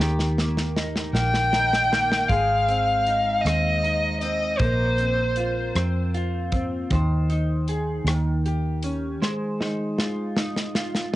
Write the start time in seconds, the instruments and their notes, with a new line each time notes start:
Already playing: fingered electric bass D#2
0.00 clean electric guitar D#3 G4, snare
0.19 snare
0.38 clean electric guitar A#3, snare
0.57 snare
0.76 clean electric guitar D#4, snare
0.96 snare
1.13 fingered electric bass A#1, clean electric guitar A#3, violin G5, snare
1.34 snare
1.53 clean electric guitar D#4, snare
1.73 snare
1.92 clean electric guitar A#3, snare
2.12 snare
2.28 fingered electric bass G#1, clean electric guitar G#3 G#4, violin F5, kick, closed hi-hat
2.68 clean electric guitar C4, closed hi-hat
3.07 clean electric guitar D#4, closed hi-hat
3.41 fingered electric bass D#2, clean electric guitar C4, violin D#5
3.46 cross-stick, closed hi-hat
3.84 clean electric guitar D#4, closed hi-hat
4.21 clean electric guitar C4, violin D#5, closed hi-hat
4.59 fingered electric bass A#1, clean electric guitar A#3 A#4, violin C5, kick, closed hi-hat
4.98 clean electric guitar C4, closed hi-hat
5.36 clean electric guitar F4, closed hi-hat
5.75 fingered electric bass F2, clean electric guitar C4, cross-stick, closed hi-hat
6.14 clean electric guitar F4, closed hi-hat
6.52 clean electric guitar C4, kick, closed hi-hat
6.90 fingered electric bass D#2, clean electric guitar D#3 C5, kick, closed hi-hat
7.30 clean electric guitar D#4, closed hi-hat
7.68 clean electric guitar G#4, closed hi-hat
8.05 fingered electric bass D#2, clean electric guitar D#3, cross-stick, closed hi-hat
8.46 clean electric guitar G4, closed hi-hat
8.83 clean electric guitar C#4, closed hi-hat
9.22 clean electric guitar G#3 C5, snare
9.60 clean electric guitar D#4, snare
9.98 clean electric guitar F4, snare
10.37 clean electric guitar D#4, snare
10.57 snare
10.75 clean electric guitar F4, snare
10.95 snare